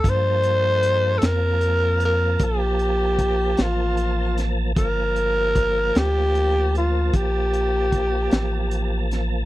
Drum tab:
HH |xxxxxxxxxxxx|xxxxxxxxxxxx|
SD |---o-----o-o|---o-----o-o|
BD |o-----o-o---|o-o---o-o---|